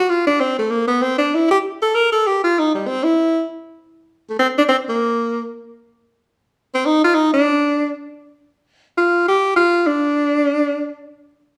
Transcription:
tenor saxophone
Already playing: F#4
0.09 F4
0.27 D4
0.40 C4
0.59 A3
0.70 A#3
0.88 B3
1.02 C4
1.18 D4
1.34 E4
1.51 G4
1.82 A4
1.95 A#4
2.12 A4
2.27 G4
2.44 F4
2.59 D#4
2.75 G3
2.87 C4
3.04 E4
4.30 A3
4.39 C4
4.58 D4
4.69 C4
4.89 A#3
6.75 C4
6.86 D#4
7.04 F4
7.15 D#4
7.33 D4
8.98 F4
9.28 G4
9.56 F4
9.87 D4

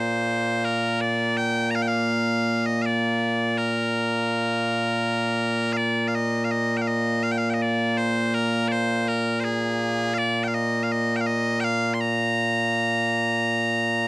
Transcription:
bagpipes
Already playing: A#2 A#3 C5
0.65 A#4
1.01 D5
1.37 G5
1.71 A#5
1.75 F5
1.82 G5
1.88 F5
2.66 D#5
2.82 D5 F5
3.58 A#4
5.73 F5
5.77 D5
6.08 F5
6.15 D#5
6.45 F5
6.51 D#5
6.77 G5
6.81 F5
6.88 D#5
7.23 F5
7.31 G5
7.38 F5
7.50 G5
7.54 D#5
7.62 D5
7.98 C5
8.34 A#4
8.68 C5 D5
9.08 A#4
9.40 C5
9.44 G#4
10.14 F5
10.18 D5
10.44 G5
10.48 F5
10.54 D#5
10.83 F5
10.92 D#5
11.16 G5
11.21 F5
11.27 D#5
11.60 F5 G5
11.94 C6
12.01 A#5

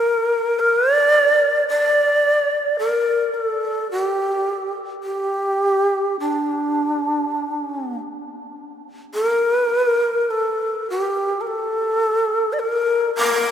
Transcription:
shakuhachi
Already playing: A#4
0.59 A#4
0.95 D5
1.69 D5
2.79 A#4
3.34 A#4
3.45 A4
3.91 G4
5.03 G4
6.20 D4
9.14 A#4
10.31 A4
10.90 G4
11.41 A#4
11.47 A4
12.53 D5
12.59 A#4
13.16 A#4

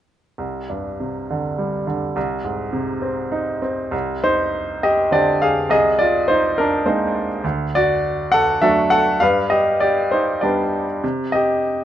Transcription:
grand piano
0.38 C2
0.70 G2
1.00 C3
1.30 D3
1.58 G3
1.87 D3
2.16 C2
2.44 G#2
2.73 C3
3.02 C4
3.32 D#4
3.62 C4
3.91 C2
4.24 D#4 C5
4.83 G4 D#5
5.11 D3 C4 D4 G4 D5
5.42 G#4 F5
5.70 C2 G#4 D#5
5.99 F4 D5
6.28 D#4 C5
6.58 D4 A#4
6.86 G#3 A#3 C4 D#4 C5
7.44 D2
7.75 F#4 D5
8.32 A4 F#5
8.62 F#3 A3 D4 A4 E5
8.90 A4 F#5
9.20 G2 B4 F5
9.50 G4 D#5
9.80 G4 D5
10.11 D#4 C5
10.41 G3 B3 D4 G4 D5
11.04 C3
11.32 G4 D#5

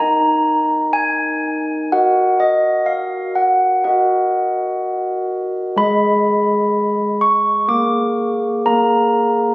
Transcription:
handbells
Already playing: A#4
0.00 D#4 D#5 A#5
0.93 G#5
1.92 F#4 A#4 D#5 F#5
2.40 D#5
2.86 F5
3.35 F#5
3.84 F#4 A#4 D#5 F#5
5.76 G#3 G#4 D#5 B5
7.21 C#6
7.68 A#3 G#4 A#4 D6
8.66 A#3 G#4 A#4 A#5

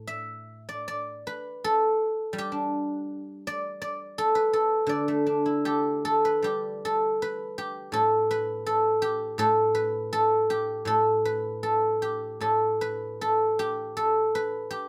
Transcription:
guzheng
Already playing: A2 A4 B4 D5
0.07 E5
0.69 D5
0.88 D5
1.27 B4
1.64 A4
2.33 G3
2.38 G4
2.52 D4
3.47 D5
3.82 D5
4.18 A4
4.35 B4
4.53 A4
4.87 D3 D5
5.08 A3
5.27 D4
5.46 E4
5.65 G4 A4
6.05 A4
6.25 B4
6.42 G3 G4
6.85 A4
7.22 B4
7.58 G4
7.92 A2 A4
8.31 B4
8.66 A4
9.02 G4
9.38 A2 A4
9.75 B4
10.13 A4
10.50 G4
10.85 A2 A4
11.25 B4
11.63 A4
12.02 G4
12.41 A2 A4
12.81 B4
13.21 A4
13.59 G4
13.97 A4
14.35 B4
14.71 G4

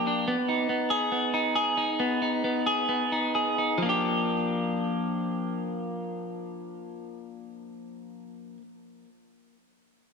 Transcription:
clean electric guitar
Already playing: F3 A#3 G4
0.07 D4
0.28 B3
0.49 D#4
0.69 B3
0.90 G#4
1.12 B3
1.34 D#4
1.55 G#4
1.77 D#4
2.00 B3
2.22 D#4
2.44 B3
2.66 G#4
2.89 B3
3.12 D#4
3.35 G#4
3.58 D#4
3.78 F3
3.82 A#3 D4
3.89 G4

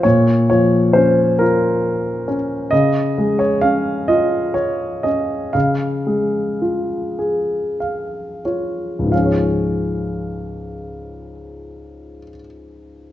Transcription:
grand piano
0.03 A#2 C#5
0.50 F3 C#5
0.93 C#4 C5
1.39 F4 A#4
2.28 C#4
2.71 C#3 D#5
3.18 G#3
3.39 C#5
3.61 C#4 F5
4.08 F4 D#5
4.54 C#5
5.03 C#4 D#5
5.53 C#3 F5
6.07 G#3
6.62 F4
7.19 G#4
7.80 F5
8.45 F4 C#5
8.99 C#2
9.04 G#2
9.10 F3 F5
9.15 C#4
9.21 G#4
9.26 C#5

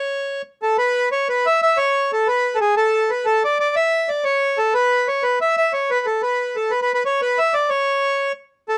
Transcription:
accordion
Already playing: C#5
0.62 A4
0.78 B4
1.12 C#5
1.29 B4
1.46 E5
1.62 E5
1.77 C#5
2.13 A4
2.27 B4
2.55 A4
2.61 G#4
2.77 A4
3.10 B4
3.25 A4
3.45 D5
3.60 D5
3.76 E5
4.09 D5
4.24 C#5
4.58 A4
4.74 B4
5.08 C#5
5.23 B4
5.41 E5
5.57 E5
5.73 C#5
5.91 B4
6.06 A4
6.22 B4
6.56 A4
6.71 B4
6.82 B4
6.94 B4
7.06 C#5
7.22 B4
7.38 E5
7.54 D5
7.70 C#5
8.69 A4

